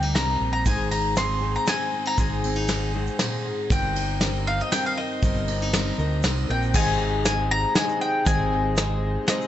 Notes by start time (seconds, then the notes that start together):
Already playing: D2 G2 D#3 G3 C4 D#4 A#4 G5
0.03 D#4
0.15 C2 G3 C4 D#4 A#4 A#5, snare, ride
0.40 A#1 D#4
0.53 A#5
0.65 G#1 G#2 D#3 G#3 C4 D#4 G#4 G#5, kick, ride, shaker
0.91 D#4 A#5, ride
1.16 G#3 C4 D#4 G#4 C6, snare, ride, shaker
1.41 D#3 G#3 C4 D#4 G#4
1.55 A#5, shaker
1.67 G#3 C4 D#4 G#4 G#5, snare, ride, shaker
1.93 C4
2.06 D#4 A#5
2.17 G#1 G#2 D#3 G#3 C4 D#4 G#4 G#5, kick, ride, shaker
2.44 C4, ride
2.56 D#4
2.67 G#3 C4 D#4 G#4, snare, ride, shaker
2.93 D#3 G#3 C4 D#4 G#4
3.07 shaker
3.19 A#2 G#3 C4 D#4 G#4, snare, ride, shaker
3.45 G#2
3.69 G1 G2 G3 C4 D#4 A#4 G5, kick, ride, shaker
3.96 D#4, ride
4.21 G3 C4 D#4 A#4, snare, ride, shaker
4.47 D#3 D#4 F5
4.60 D#5, shaker
4.71 G3 C4 D#4 A#4 G5, snare, ride, shaker
4.86 F5
4.97 C4 D#4 A#4 D#5
5.22 G1 G2 G3 C4 D#4 A#4, kick, ride, shaker
5.35 shaker
5.48 C4, ride, shaker
5.62 D#4
5.73 G3 C4 D#4 A#4, snare, ride, shaker
5.98 D2 D#3 C4 D#4 A#4, shaker
6.23 C2 G3 C4 D#4 A#4, snare, ride, shaker
6.37 shaker
6.48 A#1 C4 D#4 A#4 G5
6.62 shaker
6.74 G#1 G#2 C3 D#3 G#3 C4 D#4 G#4 C5 D#5 G#5, kick, crash, shaker
7.24 G#3 C4 D#4 G#4 C5 D#5 G#5, snare, closed hi-hat, shaker
7.51 A#5
7.74 G#3 C4 D#4 G#4 C5 D#5 G#5, snare, closed hi-hat, shaker
7.89 shaker
8.01 G5, shaker
8.25 G#1 G#2 D#3 G#3 C4 D#4 G#4 C5 D#5 G#5, kick, closed hi-hat, shaker
8.75 G#3 C4 D#4 G#4 C5 D#5, snare, closed hi-hat, shaker
9.27 G#3 C4 D#4 G#4 C5 D#5, snare, closed hi-hat, shaker
9.41 shaker